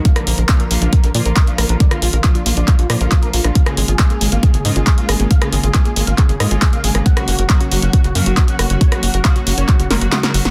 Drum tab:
HH |xxoxxxoxxxoxxxox|xxoxxxoxxxoxxxox|xxoxxxoxxxoxxxox|xxoxxxoxxxoxxxox|
CP |----x-------x---|----x---x---x---|----x-------x---|----x---x---x---|
SD |-r------------r-|-r--------r----r|-r------------r-|-r--------r----r|
BD |o---o---o---o---|o---o---o---o---|o---o---o---o---|o---o---o---o---|

HH |xxoxxxoxxxoxxxox|xxoxxxoxxxoxxxox|
CP |----x-------x---|----x---x---x---|
SD |-r------------r-|-r--------o-oo-o|
BD |o---o---o---o---|o---o---o-------|